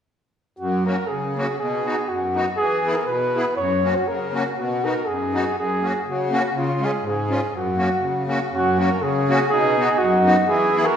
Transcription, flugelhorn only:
0.59 F#4
0.86 A#4
1.07 G#4
1.59 G#4
2.09 F#4
2.57 G#4
2.94 A#4
3.06 B4
3.56 C#5
3.96 F#4
4.08 A#4
4.58 F#4
4.84 A#4
5.06 G#4
5.59 G#4
6.10 F#4
6.58 F4
6.84 G#4
7.07 G#4
7.56 F#4
8.54 F#4
8.79 A#4
9.02 G#4
9.49 G#4
9.98 F#4
10.47 G#4
10.85 A#4

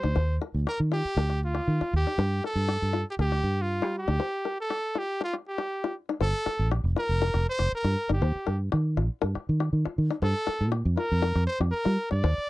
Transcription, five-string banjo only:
0.03 D#4
0.16 C5
0.42 A#4
0.67 G4
0.92 F4
1.17 A#4
1.30 G4
1.55 G4
1.81 F4
2.07 D#4
2.19 muted five-string banjo stroke
2.44 A#4
2.68 G4
2.93 F4
3.19 A#4
3.32 G4
3.82 F4
4.08 D#4
4.20 C5
4.45 A#4
4.70 G4
4.95 F4
5.21 muted five-string banjo stroke
5.33 G4
5.58 G4
5.84 F4
6.09 D#4
6.21 C5
6.46 A#4
6.71 G4
6.96 F4
7.22 A#4
7.34 G4
7.59 G4
7.84 F4
8.09 D#4
8.22 C5
8.47 A#4
8.72 G4
8.97 F4
9.22 A#4
9.35 G4
9.60 G4
9.85 F4
10.10 D#4
10.22 C5
10.47 A#4
10.72 G4
10.97 F4
11.22 A#4
11.35 G4
11.61 G4
11.85 F4
12.11 muted five-string banjo stroke
12.24 C5

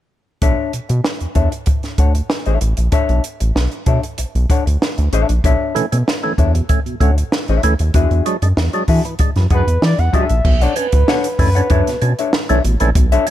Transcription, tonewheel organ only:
5.44 B2
5.75 D3 E3 A3 C#4
5.92 A3 C#4
6.23 D3 E3 A3 C#4
6.55 B2
6.69 A3 C#4
6.86 B2
7.00 A3 C#4
7.63 D3 E3 A3 C#4
7.95 E3
8.26 F#3 G#3 D4
8.43 G#3 D4
8.73 F#3 G#3 D4
9.05 E3
9.20 G#3 D4
9.37 E3
9.51 G#3 D4
10.14 F#3 G#3 D4
10.46 B2
10.76 C#4 D4
11.08 B2
11.39 E3 A3 C#4 D4
11.56 C#4 D4
11.71 C#4 D4
11.87 B2
12.02 C#4 D4
12.49 E3 A3 C#4 D4
12.64 B2
12.80 E3 A3 C#4 D4
12.96 B2
13.27 C#4 D4

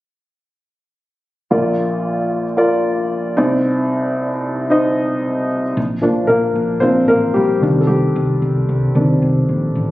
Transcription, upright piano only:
1.51 A#1 A#2 F4 A#4 D5
2.57 F4 A#4 D5
3.37 C2 C3 D#4 C5 D5
4.70 D#4 C5 D#5
6.01 F3 A#3 D4
6.27 A#3 A#4
6.80 F3 A#3 C4 D4 C5
7.08 A#3 A#4
7.34 G3 G4
7.61 D#3 C4 D4
7.80 A4
7.87 G3 G4
8.95 D#3 C4 D4

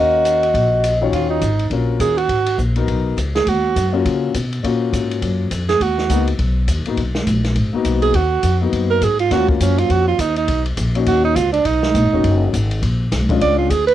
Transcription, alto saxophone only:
Already playing: F#4
1.14 F4
1.30 D#4
2.01 G#4
2.18 F#4
3.36 G#4
3.49 F#4
5.69 G#4
5.82 F#4
8.02 G#4
8.16 F#4
8.91 A#4
9.04 G#4
9.20 F4
9.33 F#4
9.50 A#3
9.62 C#4
9.79 F4
9.91 F#4
10.08 F4
10.21 D#4
10.37 D#4
11.08 F#4
11.25 D#4
11.36 F4
11.53 D4
11.65 D#4
13.42 D5
13.58 F4
13.70 G#4
13.87 B4

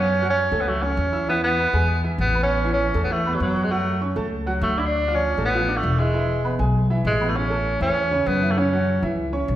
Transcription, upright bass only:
Already playing: F#2
0.52 C#2
0.97 E2
1.73 E2
2.18 A1
2.94 E2
3.40 F#2
4.16 C#2
4.61 D2
5.37 A1
5.83 E1
6.59 B1
7.05 A1
7.80 E2
8.26 F#2
9.03 C#2
9.48 B1

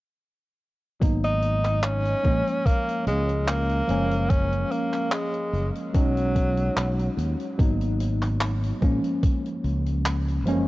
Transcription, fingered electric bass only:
1.02 G#1
2.25 A#1
3.07 C#2
3.89 F#1
5.53 F#1
5.94 B1
6.77 B1
7.17 D#2
7.59 G#1
8.82 A#1
9.64 C#2
10.46 F#1

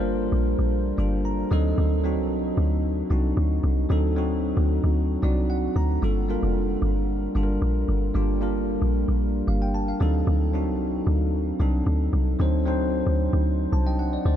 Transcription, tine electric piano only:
Already playing: G3 A#3 D4 F4 A#4
0.00 C5
0.97 G3 A#3 D4 F4 A4
1.25 A#5
1.51 F#3 C4 D4 D#4 A4 D#5
2.04 F#3 C4 D4 D#4 F#4
3.10 F#3 C4 D4 D#4 F#4
3.89 F#3 C4 D4 D#4 A4
4.16 F#3 C4 D4 D#4 F#4
5.22 F#3 C4 D4 D#4 F#4 D5
5.50 F#5
5.76 A#5
6.02 G3 A#3 D4 F4 A4
6.28 G3 A#3 D4 F4 A#4
7.35 G3 A#3 D4 F4 A4
7.43 A#4
8.14 G3 A#3 D4 F4 G4
8.41 G3 A#3 D4 F4 A#4
9.48 F5
9.62 G5
9.74 A5
9.88 F5
10.00 F#3 C4 D4 D#4 A4
10.53 F#3 C4 D4 D#4 F#4
11.59 F#3 C4 D4 D#4 A4
12.39 F#3 C4 D4 D#4 C5
12.66 F#3 C4 D4 D#4 C5
13.73 A5
13.87 D#5 G5
13.99 F#5
14.13 D5
14.26 C5 D5

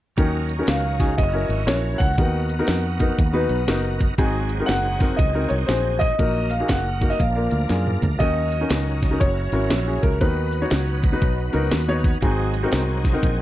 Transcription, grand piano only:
0.68 F5
1.17 D#5
1.67 C#5
1.98 F#5
4.66 F#5
5.16 D#5
5.49 C#5
5.66 C5
5.99 D#5
6.50 F5
6.68 F#5
7.10 D#5
7.19 F5
8.19 D#5
9.20 C#5
10.02 A#4
10.21 B4

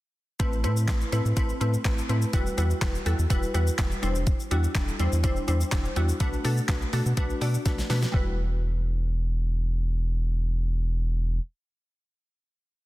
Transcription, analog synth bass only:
0.40 A1
0.64 A2
0.88 A1
1.12 A2
1.25 A2
1.37 A1
1.61 A2
1.85 A1
2.09 A2
2.34 E1
2.58 E2
2.82 E1
3.06 E2
3.19 E2
3.30 E1
3.54 E2
3.79 E1
4.03 E1
4.51 E2
4.75 E1
5.00 E2
5.12 E2
5.24 E1
5.48 E2
5.72 E1
5.96 E2
6.20 B1
6.45 B2
6.69 B1
6.93 B2
7.06 B2
7.17 B1
7.41 B2
7.66 B1
7.90 B2
8.14 E1

